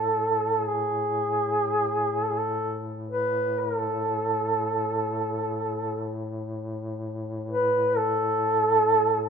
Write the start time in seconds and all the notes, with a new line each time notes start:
Already playing: A2 A4
0.67 G#4
2.22 A4
2.29 G#4
2.37 A4
3.11 B4
3.59 A#4
3.78 A4
7.50 B4
7.97 A4